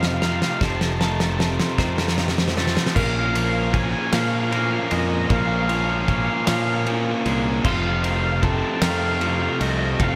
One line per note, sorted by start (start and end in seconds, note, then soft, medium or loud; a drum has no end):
0.00 0.20 F2 medium
0.00 0.22 F2 medium
0.00 0.41 F2 loud
0.00 0.21 C3 medium
0.00 1.38 C3 medium
0.00 0.99 D#3 medium
0.00 0.22 F3 loud
0.00 2.92 F3 medium
0.00 0.22 A3 loud
0.00 2.92 A3 medium
0.00 0.22 C4 loud
0.00 0.23 F4 loud
0.00 2.91 F4 medium
0.00 0.22 C5 medium
0.00 0.22 D#5 medium
0.00 2.92 D#5 medium
0.00 snare loud
0.05 0.12 F5 medium
0.13 0.20 F5 medium
0.20 0.59 F2 medium
0.20 0.60 C3 medium
0.20 0.60 F3 medium
0.20 0.60 A3 medium
0.20 0.61 C4 medium
0.20 0.61 F4 medium
0.20 0.28 F5 medium
0.20 0.61 A#5 medium
0.20 snare loud
0.28 0.35 F5 medium
0.35 0.42 F5 medium
0.42 0.49 F5 medium
0.42 snare loud
0.50 0.57 F5 medium
0.60 1.58 F1 loud
0.60 0.99 F2 loud
0.60 0.99 C3 loud
0.60 1.00 F3 medium
0.60 1.00 A3 loud
0.60 1.00 C4 loud
0.60 1.01 F4 loud
0.60 1.00 C5 medium
0.60 0.69 A5 medium
0.60 kick loud
0.60 snare loud
0.69 0.76 A5 medium
0.77 0.83 A5 medium
0.81 0.91 A5 medium
0.81 snare loud
0.92 0.99 A5 medium
1.00 1.38 F2 medium
1.00 1.38 C3 medium
1.00 1.77 D#3 medium
1.00 1.39 F3 medium
1.00 1.39 A3 loud
1.00 1.39 C4 medium
1.00 1.40 F4 loud
1.00 1.79 A4 medium
1.00 1.07 A5 medium
1.00 snare loud
1.08 1.15 A5 medium
1.15 1.22 A5 medium
1.20 1.30 A5 medium
1.20 snare loud
1.30 1.38 A5 medium
1.39 1.77 F2 medium
1.39 1.77 C3 medium
1.39 1.77 F3 medium
1.39 1.78 A3 loud
1.39 1.78 C4 loud
1.39 1.79 F4 loud
1.39 1.46 A5 medium
1.39 snare loud
1.60 snare loud
1.78 2.55 F2 loud
1.78 2.76 F2 loud
1.78 2.56 C3 loud
1.78 2.96 D#3 medium
1.78 2.56 F3 loud
1.78 2.57 A3 medium
1.78 2.57 C4 loud
1.78 2.57 F4 loud
1.78 2.57 C5 medium
1.78 kick medium
1.78 snare loud
1.98 snare loud
2.08 snare loud
2.17 2.95 C3 medium
2.17 snare loud
2.28 snare loud
2.38 snare loud
2.48 snare loud
2.57 2.93 F2 medium
2.57 2.94 C3 medium
2.57 2.94 F3 medium
2.57 2.94 A3 medium
2.57 2.94 C4 medium
2.57 2.94 F4 loud
2.57 snare loud
2.67 snare loud
2.77 snare loud
2.86 snare loud
2.95 3.93 A#1 loud
2.95 3.73 A#2 loud
2.95 3.36 F3 medium
2.95 3.35 A#3 loud
2.95 3.34 C#4 loud
2.95 3.73 A#4 loud
2.95 3.03 F5 medium
2.95 kick loud
2.95 crash loud
3.03 3.10 F5 medium
3.11 3.19 F5 medium
3.20 3.27 F5 medium
3.28 3.36 F5 medium
3.34 3.74 F3 medium
3.34 3.74 A#3 medium
3.34 3.75 C#4 medium
3.34 3.44 F5 medium
3.34 ride medium
3.45 3.53 F5 medium
3.53 3.59 F5 medium
3.60 3.68 F5 medium
3.68 3.73 F5 medium
3.73 4.13 A#2 medium
3.73 4.13 F3 medium
3.73 4.12 A#3 medium
3.73 4.11 C#4 loud
3.73 4.51 G#4 medium
3.73 3.82 G#5 loud
3.73 kick medium
3.73 ride medium
3.82 3.89 G#5 medium
3.90 3.98 G#5 medium
3.99 4.06 G#5 medium
4.07 4.12 G#5 medium
4.12 4.78 A#2 loud
4.12 4.50 A#2 medium
4.12 4.52 F3 medium
4.12 4.52 A#3 medium
4.12 4.52 C#4 medium
4.12 4.19 F5 loud
4.12 snare loud
4.12 ride loud
4.19 4.27 F5 medium
4.28 4.35 F5 medium
4.35 4.41 F5 medium
4.41 4.49 F5 medium
4.49 5.29 A#2 medium
4.49 5.31 F3 medium
4.49 5.28 A#4 medium
4.49 4.56 F5 medium
4.49 ride medium
4.53 5.30 A#3 medium
4.53 5.31 C#4 medium
4.53 4.63 F5 medium
4.63 4.70 F5 medium
4.71 4.78 F5 medium
4.78 4.85 F5 medium
4.86 4.93 F5 medium
4.91 5.24 F2 medium
4.91 5.31 F3 medium
4.91 6.87 G#3 medium
4.91 5.31 A#3 medium
4.91 5.31 C#4 medium
4.91 4.97 D#5 medium
4.91 ride medium
4.98 5.05 D#5 medium
5.06 5.13 D#5 medium
5.14 5.19 D#5 medium
5.19 5.27 D#5 medium
5.29 6.28 A#1 loud
5.29 6.07 A#2 medium
5.29 5.70 F3 loud
5.29 5.69 A#3 loud
5.29 5.68 C#4 loud
5.29 5.69 A#4 loud
5.29 5.39 F5 medium
5.29 kick loud
5.29 ride loud
5.40 5.46 F5 medium
5.46 5.54 F5 medium
5.54 5.61 F5 medium
5.61 5.69 F5 medium
5.69 6.08 F3 medium
5.69 6.08 A#3 medium
5.69 6.09 C#4 medium
5.69 6.47 C#5 medium
5.69 5.76 F5 medium
5.69 ride medium
5.77 5.84 F5 medium
5.85 5.92 F5 medium
5.93 5.99 F5 medium
5.99 6.07 F5 medium
6.08 6.48 A#2 medium
6.08 6.48 F3 medium
6.08 6.46 A#3 loud
6.08 6.46 C#4 loud
6.08 6.15 F5 medium
6.08 kick medium
6.08 ride medium
6.15 6.23 F5 medium
6.23 6.29 F5 medium
6.30 6.37 F5 medium
6.38 6.45 F5 medium
6.45 7.13 A#2 loud
6.45 6.85 A#2 medium
6.45 6.86 F3 medium
6.45 6.86 A#3 medium
6.45 6.87 C#4 loud
6.45 7.26 C#5 medium
6.45 6.53 F5 medium
6.45 snare loud
6.45 ride loud
6.53 6.61 F5 medium
6.61 6.68 F5 medium
6.69 6.74 F5 medium
6.75 6.82 F5 medium
6.86 7.62 A#2 medium
6.86 7.65 F3 medium
6.86 7.63 A#3 medium
6.86 7.64 C#4 loud
6.86 ride medium
7.26 7.58 C2 medium
7.26 7.66 F3 medium
7.26 7.65 G#3 medium
7.26 7.63 A#3 medium
7.26 7.63 C#4 medium
7.26 7.65 G#4 medium
7.26 ride medium
7.64 8.62 F1 loud
7.64 8.83 F2 loud
7.64 8.41 C3 loud
7.64 8.05 F3 loud
7.64 8.04 A3 loud
7.64 8.03 C4 loud
7.64 10.15 C5 loud
7.64 7.72 F5 loud
7.64 kick loud
7.64 crash loud
7.72 7.79 F5 medium
7.79 7.86 F5 medium
7.87 7.94 F5 medium
7.95 8.02 F5 medium
8.02 8.81 D#3 medium
8.02 8.43 F3 medium
8.02 8.44 A3 medium
8.02 8.45 C4 medium
8.02 8.10 F5 medium
8.02 ride medium
8.10 8.16 F5 medium
8.17 8.24 F5 medium
8.24 8.32 F5 medium
8.32 8.40 F5 medium
8.42 8.82 C3 medium
8.42 8.82 F3 medium
8.42 8.81 A3 medium
8.42 8.80 C4 loud
8.42 9.20 A4 medium
8.42 8.50 A5 loud
8.42 kick medium
8.42 ride medium
8.50 8.58 A5 medium
8.58 8.66 A5 loud
8.67 8.75 A5 medium
8.75 8.81 A5 medium
8.81 9.47 F2 loud
8.81 9.61 F2 medium
8.81 9.19 C3 medium
8.81 10.15 D#3 medium
8.81 9.21 F3 medium
8.81 9.21 A3 medium
8.81 9.21 C4 loud
8.81 8.89 F5 loud
8.81 snare loud
8.81 ride loud
8.90 8.97 F5 medium
8.98 9.05 F5 medium
9.05 9.12 F5 medium
9.12 9.19 F5 medium
9.20 9.98 C3 medium
9.20 10.00 F3 medium
9.20 9.99 A3 medium
9.20 10.00 C4 medium
9.20 9.98 A4 medium
9.20 9.26 F5 medium
9.20 ride medium
9.26 9.34 F5 loud
9.35 9.41 F5 medium
9.42 9.48 F5 medium
9.49 9.56 F5 medium
9.60 9.93 C2 loud
9.60 10.00 F3 medium
9.60 10.15 A3 medium
9.60 10.00 A3 medium
9.60 10.00 C4 medium
9.60 9.68 D#5 medium
9.60 ride medium
9.68 9.76 D#5 medium
9.77 9.85 D#5 medium
9.85 9.93 D#5 medium
9.94 10.02 D#5 medium
9.98 10.15 F1 loud
9.98 10.15 F2 medium
9.98 10.15 C3 medium
9.98 10.15 F3 loud
9.98 10.15 A3 loud
9.98 10.15 C4 loud
9.98 10.15 A4 loud
9.98 10.08 F5 medium
9.98 kick loud
9.98 ride loud
10.09 10.15 F5 medium